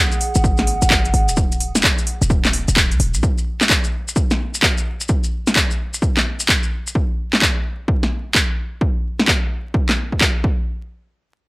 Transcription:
Already playing: ambient pad G#4 F#5 D#6
0.12 maracas
0.21 open hi-hat
0.35 808-style bass G#1, closed hi-hat, maracas
0.44 kick, maracas
0.57 snare, closed hi-hat, maracas
0.67 open hi-hat
0.82 808-style bass G#1, closed hi-hat, maracas
0.90 kick, clap, maracas
1.05 808-style bass F#1, closed hi-hat, maracas
1.14 808-style bass G#1, open hi-hat
1.28 808-style bass D#1, closed hi-hat, maracas
1.37 kick, maracas
1.52 closed hi-hat, maracas
1.60 open hi-hat
1.75 snare, closed hi-hat, maracas
1.83 kick, clap, maracas
1.98 closed hi-hat, maracas
2.07 open hi-hat
2.22 808-style bass D#1, closed hi-hat, maracas
2.30 kick, maracas
2.45 clap, snare, closed hi-hat, maracas
2.53 open hi-hat
2.68 808-style bass D#1, closed hi-hat, maracas
2.76 kick, clap, maracas
2.92 808-style bass C#2, closed hi-hat, maracas
3.00 808-style bass D#1, open hi-hat
3.14 808-style bass A#1, closed hi-hat, maracas
3.23 kick, maracas
3.38 maracas
3.61 clap, snare, maracas
3.69 kick, clap, maracas
3.84 maracas
4.08 maracas
4.16 kick, maracas
4.31 snare, maracas
4.55 maracas
4.62 kick, clap, maracas
4.78 maracas
5.01 maracas
5.08 kick, maracas
5.24 maracas
5.47 snare, maracas
5.56 kick, clap, maracas
5.71 maracas
5.94 maracas
6.02 kick, maracas
6.17 clap, snare, maracas
6.40 maracas
6.48 kick, clap, maracas
6.63 maracas
6.87 maracas
6.95 kick
7.33 clap, snare
7.42 kick, clap
7.88 kick
8.03 snare
8.35 kick, clap
8.81 kick
9.20 snare
9.28 kick, clap
9.74 kick
9.89 clap, snare
10.12 kick
10.21 kick, clap
10.44 kick

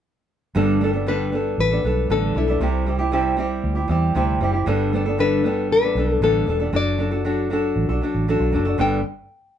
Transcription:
0.55 fingered electric bass G1, nylon-string guitar G2 D3 G3 B3 D4 A4
0.81 nylon-string guitar G3 B3 D4 A4
0.93 nylon-string guitar G3 B3 D4 A4
1.06 nylon-string guitar G2 D3 G3 B3 D4 A4 B4
1.32 nylon-string guitar G3 B3 D4 A4
1.58 fingered electric bass A1, nylon-string guitar B4
1.71 nylon-string guitar G3 B3 D4 A4
1.83 fingered electric bass B1, nylon-string guitar G3 B3 D4 A4
2.10 fingered electric bass A1, nylon-string guitar G2 D3 G3 B3 D4 A4
2.35 fingered electric bass B1, nylon-string guitar G3 B3 D4 E4 A4
2.48 nylon-string guitar G3 B3 D4 A4
2.60 fingered electric bass C2, nylon-string guitar C3 G3 C4 E4 G4
2.86 nylon-string guitar G3 C4 E4 G4
2.99 nylon-string guitar C4 E4 G4
3.12 nylon-string guitar C3 G3 C4 E4 G4
3.37 nylon-string guitar G3 C4 E4 G4
3.64 fingered electric bass D2
3.75 nylon-string guitar C4 E4 G4
3.88 fingered electric bass E2, nylon-string guitar G3 C4 E4 G4
4.15 fingered electric bass D2, nylon-string guitar C3 G3 C4 E4 G4
4.41 fingered electric bass F#1, nylon-string guitar G3 C4 E4 G4
4.53 nylon-string guitar C4 E4 G4
4.66 fingered electric bass G1, nylon-string guitar G2 D3 G3 B3 D4 A4
4.93 nylon-string guitar G3 B3 D4 A4
5.06 nylon-string guitar G3 B3 D4 A4
5.18 nylon-string guitar G2 D3 G3 B3 D4 A4 B4
5.44 nylon-string guitar G3 B3 D4 A4
5.70 fingered electric bass A1, nylon-string guitar B4
5.82 nylon-string guitar G3 B3 D4 A4
5.95 fingered electric bass B1, nylon-string guitar G3 B3 D4 A4
6.21 fingered electric bass A1, nylon-string guitar G2 D3 G3 B3 D4 A4
6.47 fingered electric bass E1, nylon-string guitar G3 B3 D4 A4
6.60 nylon-string guitar G3 B3 D4 A4
6.73 fingered electric bass F#1, nylon-string guitar F#3 D4 F#4 A4 D5
6.98 nylon-string guitar F#3 D4 F#4 A4
7.11 nylon-string guitar D4 F#4 A4
7.24 nylon-string guitar F#3 D4 F#4 A4
7.50 nylon-string guitar F#3 D4 F#4 A4
7.76 fingered electric bass A1
7.89 fingered electric bass B1, nylon-string guitar D4 F#4 A4
8.01 nylon-string guitar F#3 D4 F#4 A4
8.15 fingered electric bass A1
8.28 nylon-string guitar F#3 D4 F#4 A4
8.40 fingered electric bass B1
8.52 fingered electric bass F#1, nylon-string guitar F#3 D4 F#4 A4
8.65 nylon-string guitar D4 F#4 A4
8.78 fingered electric bass G1, nylon-string guitar G2 D3 G3 B3 D4 A4 G5

